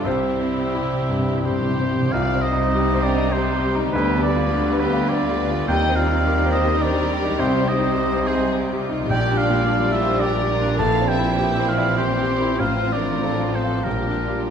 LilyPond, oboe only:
\new Staff \with { instrumentName = "Oboe" } { \time 3/4 \key c \major \tempo 4 = 102 e''2 c''4 | \key c \minor f''8 ees''4 d''8 c''4 | b'8 d''4 b'8 d''4 | g''8 f''4 ees''8 d''4 |
c''8 ees''4 c''8 r4 | \key g \dorian g''8 f''4 e''8 d''4 | a''8 g''4 f''8 c''4 | f''8 d''4 c''8 bes'4 | }